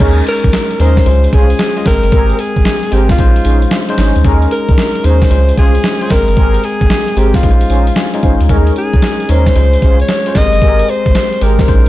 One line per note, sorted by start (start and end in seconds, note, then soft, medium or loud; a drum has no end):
0.00 0.21 D#2 loud
0.00 0.56 G#3 medium
0.00 0.25 C#4 loud
0.00 0.56 C#4 medium
0.00 0.25 D#4 medium
0.00 0.56 D#4 medium
0.00 0.25 G#4 medium
0.00 0.25 A#4 loud
0.00 0.57 A#4 medium
0.00 kick loud
0.00 closed hi-hat medium
0.00 crash medium
0.18 closed hi-hat soft
0.27 0.77 A#4 loud
0.27 closed hi-hat medium
0.44 0.51 C#2 medium
0.44 kick medium
0.44 closed hi-hat soft
0.53 snare loud
0.53 closed hi-hat medium
0.71 closed hi-hat soft
0.79 1.01 D#2 medium
0.79 1.05 G#3 medium
0.79 0.96 C#4 medium
0.79 1.05 C#4 medium
0.79 0.96 D#4 medium
0.79 1.07 D#4 medium
0.79 0.96 G#4 medium
0.79 0.97 A#4 medium
0.79 1.07 A#4 medium
0.79 1.36 C5 loud
0.79 closed hi-hat medium
0.97 kick loud
0.97 snare medium
0.97 closed hi-hat medium
1.06 1.27 C#2 loud
1.06 1.59 G#3 medium
1.06 1.59 C#4 medium
1.06 1.60 F4 medium
1.06 1.60 C5 medium
1.06 closed hi-hat medium
1.24 closed hi-hat medium
1.32 1.54 C2 medium
1.32 1.49 C#4 medium
1.32 1.49 F4 medium
1.32 1.50 G#4 medium
1.32 1.87 G#4 medium
1.32 1.50 C5 medium
1.32 kick loud
1.32 closed hi-hat medium
1.50 closed hi-hat medium
1.59 snare loud
1.59 closed hi-hat medium
1.77 1.84 G#3 medium
1.77 1.86 C#4 medium
1.77 1.86 F4 medium
1.77 1.86 D#5 medium
1.77 closed hi-hat medium
1.85 2.00 G#1 medium
1.85 2.72 G#3 medium
1.85 2.73 C4 medium
1.85 1.95 A4 medium
1.85 2.42 A#4 loud
1.85 2.73 G5 medium
1.85 kick medium
1.85 snare medium
1.85 closed hi-hat medium
1.93 2.76 A#4 medium
2.03 2.11 G1 medium
2.03 closed hi-hat medium
2.12 2.33 G#1 loud
2.12 2.37 C4 loud
2.12 2.37 G4 medium
2.12 2.37 G#4 medium
2.12 2.37 A#4 loud
2.12 kick loud
2.12 closed hi-hat medium
2.30 closed hi-hat soft
2.39 2.94 G#4 medium
2.39 closed hi-hat medium
2.56 2.64 G1 medium
2.56 kick medium
2.56 closed hi-hat soft
2.65 snare loud
2.65 closed hi-hat medium
2.83 closed hi-hat soft
2.92 3.13 G#1 medium
2.92 3.17 G#3 medium
2.92 3.09 C4 medium
2.92 3.18 C4 medium
2.92 3.09 G4 medium
2.92 3.19 G4 medium
2.92 3.10 G4 medium
2.92 3.09 G#4 medium
2.92 3.09 A#4 medium
2.92 3.19 C5 medium
2.92 closed hi-hat medium
3.09 3.95 F4 medium
3.09 kick medium
3.09 snare medium
3.09 closed hi-hat soft
3.18 3.40 A#1 loud
3.18 3.72 G#3 medium
3.18 3.72 C#4 medium
3.18 3.72 D#4 medium
3.18 3.72 C5 medium
3.18 kick loud
3.18 closed hi-hat medium
3.36 closed hi-hat medium
3.45 3.66 A#1 medium
3.45 3.62 C#4 medium
3.45 3.62 D#4 medium
3.45 3.62 G#4 medium
3.45 3.62 C5 medium
3.45 closed hi-hat medium
3.62 closed hi-hat medium
3.71 snare loud
3.71 closed hi-hat medium
3.89 4.17 G#3 medium
3.89 4.17 C#4 medium
3.89 4.17 D#4 medium
3.89 4.17 C5 loud
3.89 closed hi-hat medium
3.98 4.12 G#1 medium
3.98 4.15 C#4 medium
3.98 4.15 D#4 medium
3.98 4.15 G#4 medium
3.98 4.15 C5 medium
3.98 snare medium
3.98 closed hi-hat medium
4.16 4.23 D2 medium
4.16 closed hi-hat medium
4.24 4.46 D#2 loud
4.24 4.81 G#3 medium
4.24 4.50 C#4 loud
4.24 4.81 C#4 medium
4.24 4.50 D#4 medium
4.24 4.81 D#4 medium
4.24 4.50 G#4 medium
4.24 4.34 A4 medium
4.24 4.50 A#4 loud
4.24 kick loud
4.24 closed hi-hat medium
4.32 4.84 A#4 loud
4.42 closed hi-hat soft
4.51 5.07 A#4 loud
4.51 closed hi-hat medium
4.69 4.76 C#2 medium
4.69 kick medium
4.69 closed hi-hat soft
4.78 snare loud
4.78 closed hi-hat medium
4.95 closed hi-hat medium
5.04 5.25 D#2 medium
5.04 5.29 G#3 medium
5.04 5.21 C#4 medium
5.04 5.30 C#4 medium
5.04 5.21 D#4 medium
5.04 5.31 D#4 medium
5.04 5.21 G#4 medium
5.04 5.21 A#4 medium
5.04 5.30 C5 medium
5.04 5.58 C5 loud
5.04 closed hi-hat medium
5.22 kick medium
5.22 snare medium
5.22 closed hi-hat medium
5.30 5.52 C#2 loud
5.30 5.84 G#3 medium
5.30 5.84 C#4 medium
5.30 5.84 F4 medium
5.30 5.84 C5 medium
5.30 closed hi-hat medium
5.49 closed hi-hat medium
5.57 5.79 C2 medium
5.57 5.74 C#4 medium
5.57 5.74 F4 medium
5.57 5.74 G#4 medium
5.57 6.13 G#4 loud
5.57 5.74 C5 medium
5.57 kick loud
5.57 closed hi-hat medium
5.75 closed hi-hat medium
5.84 snare loud
5.84 closed hi-hat medium
6.01 6.09 G#3 medium
6.01 6.11 C#4 medium
6.01 6.11 F4 medium
6.01 6.11 C5 medium
6.01 closed hi-hat medium
6.10 6.25 G#1 medium
6.10 6.97 G#3 medium
6.10 6.97 C4 medium
6.10 6.98 A#4 medium
6.10 6.67 A#4 loud
6.10 6.97 G5 medium
6.10 kick medium
6.10 snare medium
6.10 closed hi-hat medium
6.28 6.35 G1 medium
6.28 closed hi-hat medium
6.36 6.58 G#1 loud
6.36 6.62 C4 medium
6.36 6.62 G4 medium
6.36 6.62 G#4 medium
6.36 6.62 A#4 loud
6.36 kick loud
6.36 closed hi-hat medium
6.54 closed hi-hat soft
6.64 7.20 G#4 medium
6.64 closed hi-hat medium
6.81 6.88 G1 medium
6.81 kick medium
6.81 closed hi-hat soft
6.90 snare loud
6.90 closed hi-hat medium
7.08 closed hi-hat soft
7.16 7.38 G#1 medium
7.16 7.42 G#3 medium
7.16 7.33 C4 medium
7.16 7.43 C4 medium
7.16 7.33 G4 medium
7.16 7.44 G4 medium
7.16 7.37 G4 medium
7.16 7.34 G#4 medium
7.16 7.34 A#4 medium
7.16 7.44 C5 medium
7.16 closed hi-hat medium
7.34 8.23 F4 medium
7.34 kick medium
7.34 snare medium
7.34 closed hi-hat medium
7.43 7.64 A#1 loud
7.43 7.96 G#3 medium
7.43 7.96 C#4 medium
7.43 7.97 D#4 medium
7.43 7.52 B4 medium
7.43 kick medium
7.43 closed hi-hat medium
7.51 8.00 C5 medium
7.61 closed hi-hat medium
7.69 7.91 A#1 medium
7.69 7.86 C#4 medium
7.69 7.87 D#4 medium
7.69 7.87 G#4 medium
7.69 7.87 C5 medium
7.69 closed hi-hat medium
7.87 closed hi-hat medium
7.96 8.21 G#5 medium
7.96 snare loud
7.96 closed hi-hat medium
8.14 8.41 G#3 medium
8.14 8.42 C#4 medium
8.14 8.42 D#4 medium
8.14 8.42 F4 medium
8.14 closed hi-hat soft
8.22 8.37 G#1 loud
8.22 8.39 C#4 medium
8.22 8.40 D#4 medium
8.22 8.40 G#4 medium
8.22 8.40 C5 medium
8.22 8.48 F5 medium
8.22 kick medium
8.22 closed hi-hat medium
8.41 8.48 D2 medium
8.41 closed hi-hat medium
8.49 8.71 D#2 loud
8.49 8.58 G3 medium
8.49 8.74 C#4 medium
8.49 9.06 C#4 medium
8.49 8.74 D#4 medium
8.49 9.06 D#4 medium
8.49 8.75 G#4 medium
8.49 8.75 A#4 loud
8.49 9.06 A#4 loud
8.49 kick loud
8.49 closed hi-hat medium
8.56 9.09 G#3 medium
8.67 closed hi-hat soft
8.76 9.32 G#4 medium
8.76 closed hi-hat medium
8.93 9.01 C#2 medium
8.93 kick medium
8.93 closed hi-hat soft
9.02 snare loud
9.02 closed hi-hat medium
9.20 closed hi-hat medium
9.29 9.50 D#2 medium
9.29 9.54 G#3 medium
9.29 9.46 C#4 medium
9.29 9.55 C#4 medium
9.29 9.46 D#4 medium
9.29 9.56 D#4 medium
9.29 9.46 G#4 medium
9.29 9.46 A#4 medium
9.29 10.01 C5 loud
9.29 9.56 C#5 medium
9.29 closed hi-hat medium
9.46 kick medium
9.46 snare medium
9.46 closed hi-hat medium
9.56 9.77 C#2 loud
9.56 10.09 G#3 medium
9.56 10.09 C#4 medium
9.56 10.09 F4 medium
9.56 10.09 C5 medium
9.56 closed hi-hat medium
9.73 closed hi-hat medium
9.82 10.03 C2 medium
9.82 9.99 C#4 medium
9.82 9.99 F4 medium
9.82 9.99 G#4 medium
9.82 9.99 C5 medium
9.82 kick loud
9.82 closed hi-hat medium
10.00 10.38 C#5 loud
10.00 closed hi-hat medium
10.08 snare loud
10.08 closed hi-hat medium
10.26 10.34 G#3 medium
10.26 10.35 C#4 medium
10.26 10.36 F4 medium
10.26 10.36 C5 medium
10.26 closed hi-hat medium
10.35 10.49 G#1 loud
10.35 11.22 G#3 medium
10.35 11.22 C4 medium
10.35 11.22 G4 medium
10.35 11.22 A#4 medium
10.35 10.91 D#5 loud
10.35 kick medium
10.35 snare medium
10.35 closed hi-hat medium
10.53 10.60 G1 medium
10.53 closed hi-hat medium
10.61 10.83 G#1 loud
10.61 10.87 C4 medium
10.61 10.87 G4 medium
10.61 10.87 G#4 medium
10.61 10.87 A#4 loud
10.61 kick loud
10.61 closed hi-hat medium
10.79 closed hi-hat soft
10.89 11.44 C5 loud
10.89 closed hi-hat medium
11.06 11.13 G1 medium
11.06 kick loud
11.06 closed hi-hat soft
11.15 snare loud
11.15 closed hi-hat medium
11.33 closed hi-hat soft
11.41 11.63 G#1 medium
11.41 11.67 G#3 medium
11.41 11.58 C4 medium
11.41 11.68 C4 medium
11.41 11.58 G4 medium
11.41 11.68 G4 medium
11.41 11.58 G#4 medium
11.41 11.58 A#4 medium
11.41 11.60 A#4 medium
11.41 11.68 C5 medium
11.41 closed hi-hat medium
11.59 11.89 A#4 medium
11.59 kick loud
11.59 snare medium
11.59 closed hi-hat medium
11.68 11.89 A#1 loud
11.68 11.89 G#3 medium
11.68 11.89 C#4 medium
11.68 11.89 D#4 medium
11.68 11.89 C5 medium
11.68 kick loud
11.68 closed hi-hat medium